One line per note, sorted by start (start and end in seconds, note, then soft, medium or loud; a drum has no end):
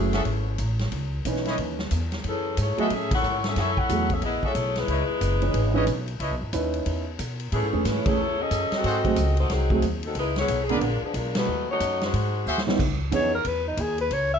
0.00 0.25 F#1 medium
0.00 0.76 E3 medium
0.00 0.11 F#3 medium
0.00 0.11 A3 medium
0.00 0.76 A3 medium
0.00 0.76 C#4 medium
0.00 0.12 E4 medium
0.00 0.12 G#4 medium
0.00 0.76 G#4 medium
0.13 0.22 F#4 medium
0.13 0.22 G#4 medium
0.13 0.22 A4 medium
0.13 0.22 E5 medium
0.13 snare medium
0.13 ride soft
0.25 0.58 G#1 medium
0.25 kick soft
0.25 ride medium
0.58 0.91 A1 medium
0.58 kick soft
0.58 hi-hat pedal soft
0.58 ride medium
0.79 snare soft
0.79 ride soft
0.92 1.24 C#2 medium
0.92 kick soft
0.92 ride medium
1.25 1.57 B1 medium
1.25 1.75 E3 medium
1.25 1.76 C#4 soft
1.25 1.76 D#4 soft
1.25 1.76 B4 medium
1.25 kick soft
1.25 hi-hat pedal medium
1.25 ride medium
1.36 snare soft
1.45 1.55 E4 medium
1.45 1.55 B4 medium
1.45 1.55 C#5 medium
1.45 1.55 D#5 medium
1.45 snare soft
1.45 ride soft
1.58 1.90 D#2 medium
1.58 kick soft
1.58 ride medium
1.79 snare soft
1.91 2.23 E2 medium
1.91 kick soft
1.91 hi-hat pedal medium
1.91 ride medium
2.12 snare soft
2.12 ride soft
2.24 2.56 F#2 medium
2.24 2.57 E3 medium
2.24 kick soft
2.24 ride medium
2.28 2.57 C#4 medium
2.28 2.57 G#4 medium
2.28 2.57 A4 medium
2.57 2.77 G#2 medium
2.57 2.80 A3 medium
2.57 2.79 E4 medium
2.57 2.79 G#4 medium
2.57 2.80 C#5 medium
2.57 kick soft
2.57 hi-hat pedal medium
2.57 ride medium
2.78 2.89 F#3 medium
2.78 2.89 A3 medium
2.78 2.91 B3 medium
2.78 2.89 E4 medium
2.78 2.91 E4 medium
2.78 2.87 F#4 medium
2.78 2.87 G#4 medium
2.78 2.90 G#4 medium
2.78 2.91 G#4 medium
2.78 2.87 A4 medium
2.78 2.91 D#5 medium
2.78 2.87 E5 medium
2.78 muted upright bass stroke soft
2.78 ride soft
2.90 3.22 A2 medium
2.90 3.12 C#4 medium
2.90 3.12 G#4 medium
2.90 3.12 A4 medium
2.90 3.12 E5 loud
2.90 kick soft
2.90 ride medium
3.11 3.43 E4 medium
3.11 3.43 A4 medium
3.11 3.43 C#5 medium
3.11 3.43 F#5 loud
3.11 kick medium
3.11 ride medium
3.23 3.55 G#2 medium
3.23 hi-hat pedal soft
3.44 3.58 C#4 medium
3.44 3.58 G#4 medium
3.44 3.58 A4 medium
3.44 3.58 E5 medium
3.44 snare medium
3.44 ride soft
3.56 3.88 F#2 medium
3.56 3.78 E4 medium
3.56 3.71 F#4 medium
3.56 3.71 G#4 medium
3.56 3.71 A4 medium
3.56 3.78 A4 medium
3.56 3.78 C#5 medium
3.56 3.71 E5 medium
3.56 3.78 G#5 loud
3.56 kick soft
3.56 snare soft
3.56 ride medium
3.77 4.11 E4 medium
3.77 4.11 A4 medium
3.77 4.11 C#5 medium
3.77 4.11 F#5 loud
3.77 kick medium
3.89 4.21 E2 medium
3.89 4.08 F#3 medium
3.89 4.09 A3 medium
3.89 4.08 E4 medium
3.89 4.09 G#4 medium
3.89 kick soft
3.89 hi-hat pedal medium
3.89 ride medium
4.10 4.24 C#4 medium
4.10 4.23 G#4 medium
4.10 4.24 A4 medium
4.10 4.23 E5 medium
4.10 kick medium
4.10 ride soft
4.22 4.41 A1 medium
4.22 4.43 B3 medium
4.22 4.43 E4 medium
4.22 4.43 G#4 medium
4.22 4.43 D#5 medium
4.22 kick soft
4.22 ride medium
4.43 4.77 A3 medium
4.43 4.77 E4 medium
4.43 4.52 F#4 medium
4.43 4.51 G#4 medium
4.43 4.78 G#4 medium
4.43 4.52 A4 medium
4.43 4.77 C#5 loud
4.43 4.52 E5 medium
4.43 muted upright bass stroke soft
4.43 kick soft
4.55 4.87 B1 medium
4.55 kick soft
4.55 hi-hat pedal medium
4.55 ride medium
4.76 6.09 G#3 medium
4.76 6.09 D#4 medium
4.76 6.09 E4 medium
4.76 6.09 B4 medium
4.76 snare soft
4.76 ride soft
4.88 5.07 C#2 medium
4.88 5.03 E4 medium
4.88 5.03 B4 medium
4.88 5.03 C#5 medium
4.88 5.03 D#5 medium
4.88 kick soft
4.88 ride medium
5.08 muted upright bass stroke soft
5.21 5.53 F#1 medium
5.21 kick soft
5.21 hi-hat pedal medium
5.21 ride medium
5.42 5.73 E3 medium
5.42 5.73 C#4 medium
5.42 5.74 B4 medium
5.42 5.74 D#5 medium
5.42 ride soft
5.54 5.86 G#1 medium
5.54 kick soft
5.54 ride medium
5.74 5.86 E3 medium
5.74 5.86 C#4 medium
5.74 5.86 D#4 medium
5.74 5.83 E4 medium
5.74 5.83 B4 medium
5.74 5.86 B4 medium
5.74 5.83 C#5 medium
5.74 5.83 D#5 medium
5.87 6.19 B1 medium
5.87 kick soft
5.87 hi-hat pedal medium
5.87 ride medium
6.08 ride soft
6.20 6.31 C#2 medium
6.20 6.34 E4 medium
6.20 6.34 B4 medium
6.20 6.34 C#5 medium
6.20 6.34 D#5 medium
6.20 kick soft
6.20 ride medium
6.31 6.41 B1 medium
6.42 6.52 G#1 medium
6.53 6.85 D#2 medium
6.53 7.03 C#4 medium
6.53 7.03 D#4 medium
6.53 7.03 E4 medium
6.53 7.03 B4 medium
6.53 kick soft
6.53 hi-hat pedal medium
6.53 ride medium
6.74 ride soft
6.86 7.18 E2 medium
6.86 kick soft
6.86 ride medium
7.19 7.51 B2 medium
7.19 kick soft
7.19 hi-hat pedal medium
7.19 ride medium
7.40 ride soft
7.52 7.62 A2 medium
7.52 7.83 E3 medium
7.52 7.84 A3 medium
7.52 7.83 C#4 medium
7.52 7.66 E4 medium
7.52 7.66 G#4 medium
7.52 7.83 G#4 medium
7.52 7.66 A4 medium
7.52 7.66 C#5 medium
7.52 kick soft
7.52 ride medium
7.62 7.73 G#2 medium
7.73 7.84 E2 medium
7.73 8.04 E3 medium
7.73 8.04 A3 soft
7.73 8.04 C#4 medium
7.73 8.04 G#4 medium
7.85 8.04 G#2 medium
7.85 8.07 G#3 medium
7.85 8.07 C#4 medium
7.85 8.06 E4 medium
7.85 8.07 B4 medium
7.85 kick soft
7.85 snare soft
7.85 hi-hat pedal medium
7.85 ride medium
8.06 8.17 E3 medium
8.06 8.39 A3 medium
8.06 8.17 A3 medium
8.06 8.18 C#4 medium
8.06 8.40 E4 medium
8.06 8.40 G#4 medium
8.06 8.18 G#4 medium
8.06 8.40 C#5 loud
8.06 muted upright bass stroke soft
8.06 kick medium
8.06 ride medium
8.18 8.50 E2 medium
8.40 8.73 C#4 loud
8.40 8.73 G#4 medium
8.40 8.73 A4 loud
8.40 8.73 D#5 loud
8.51 8.70 F#2 medium
8.51 kick soft
8.51 hi-hat pedal medium
8.51 ride medium
8.71 9.35 C4 medium
8.71 9.35 F#4 medium
8.71 9.35 A4 medium
8.71 9.35 D#5 loud
8.71 muted upright bass stroke soft
8.71 snare soft
8.71 ride soft
8.84 9.16 G#2 medium
8.84 8.98 F#4 medium
8.84 8.98 G#4 medium
8.84 8.98 A4 medium
8.84 8.98 C5 medium
8.84 kick soft
8.84 ride medium
9.05 9.16 F#3 medium
9.05 9.16 A3 medium
9.05 9.16 C4 medium
9.05 9.17 G#4 medium
9.05 kick medium
9.05 ride soft
9.16 9.49 C#2 medium
9.16 kick soft
9.16 hi-hat pedal medium
9.16 ride medium
9.37 9.51 A3 medium
9.37 9.50 D#4 medium
9.37 9.51 F#4 medium
9.37 9.51 C5 medium
9.37 ride soft
9.49 9.81 C2 medium
9.49 9.84 F#3 medium
9.49 9.84 C4 medium
9.49 9.84 D#4 medium
9.49 9.84 G#4 medium
9.49 kick soft
9.49 snare soft
9.49 ride medium
9.70 9.82 F#3 medium
9.70 9.82 A3 medium
9.70 9.82 C4 medium
9.70 9.83 G#4 medium
9.70 kick medium
9.82 10.14 D#2 medium
9.82 kick soft
9.82 hi-hat pedal medium
9.82 ride medium
10.03 10.16 F#3 medium
10.03 10.16 C4 medium
10.03 10.16 D#4 medium
10.03 10.16 A4 medium
10.03 ride soft
10.15 10.47 C#2 medium
10.15 10.36 G#3 medium
10.15 10.36 D#4 medium
10.15 10.36 E4 medium
10.15 10.36 B4 medium
10.15 kick soft
10.15 ride medium
10.36 10.60 B3 medium
10.36 10.61 E4 medium
10.36 10.60 G#4 medium
10.36 10.60 C#5 medium
10.36 snare soft
10.36 ride soft
10.48 10.80 B1 medium
10.48 kick soft
10.48 hi-hat pedal medium
10.48 ride medium
10.63 10.71 G#4 medium
10.69 10.81 D3 medium
10.69 11.04 G#3 medium
10.69 10.81 A#3 medium
10.69 10.81 B3 medium
10.69 11.03 D4 medium
10.69 11.04 F4 medium
10.69 10.77 G#4 medium
10.69 10.82 G#4 medium
10.69 10.77 A#4 medium
10.69 11.04 A#4 medium
10.69 10.77 B4 medium
10.69 10.77 D5 medium
10.69 ride soft
10.81 11.01 A#1 medium
10.81 kick soft
10.81 ride medium
11.02 11.15 F3 medium
11.02 11.15 B3 medium
11.02 11.15 D4 medium
11.02 11.15 G#4 medium
11.02 muted upright bass stroke soft
11.14 11.46 B1 medium
11.14 11.36 G#3 medium
11.14 11.36 D4 medium
11.14 11.36 F4 medium
11.14 11.36 A#4 medium
11.14 kick soft
11.14 hi-hat pedal medium
11.14 ride medium
11.35 11.67 A3 medium
11.35 11.67 D#4 medium
11.35 11.67 F#4 medium
11.35 11.67 B4 medium
11.35 snare medium
11.35 ride medium
11.48 11.80 D#2 medium
11.71 12.00 A3 medium
11.71 12.00 D#4 medium
11.71 12.00 F#4 medium
11.71 12.00 C#5 medium
11.80 12.12 F#2 medium
11.80 kick soft
11.80 hi-hat pedal medium
11.80 ride medium
12.02 12.64 G#3 medium
12.02 12.65 D#4 medium
12.02 12.64 F#4 medium
12.02 12.64 C5 medium
12.02 snare soft
12.02 ride soft
12.13 12.45 G#2 medium
12.13 kick soft
12.13 ride medium
12.46 12.78 D#2 medium
12.46 12.61 F#4 medium
12.46 12.61 G#4 medium
12.46 12.61 C5 medium
12.46 12.61 E5 medium
12.46 hi-hat pedal medium
12.58 snare medium
12.67 12.78 D#3 medium
12.67 12.78 B3 medium
12.67 12.78 C#4 medium
12.67 12.79 E4 medium
12.67 snare medium
12.79 13.11 C#2 medium
12.79 kick medium
12.79 crash medium
13.11 13.44 F2 medium
13.11 13.30 E3 medium
13.11 13.31 B3 medium
13.11 13.31 C#4 soft
13.11 13.31 D#4 medium
13.11 13.31 G#4 medium
13.11 13.33 C#5 medium
13.11 kick soft
13.11 hi-hat pedal medium
13.11 ride medium
13.34 13.49 A#4 medium
13.45 13.77 E2 medium
13.45 13.67 B4 medium
13.45 kick soft
13.45 ride medium
13.68 13.82 D#4 medium
13.77 14.09 D#2 medium
13.77 14.00 G#4 medium
13.77 kick soft
13.77 hi-hat pedal medium
13.77 ride medium
13.98 14.15 B4 medium
13.98 ride soft
14.10 14.39 C#2 medium
14.10 14.33 C#5 medium
14.10 kick soft
14.10 ride medium
14.34 14.39 E5 loud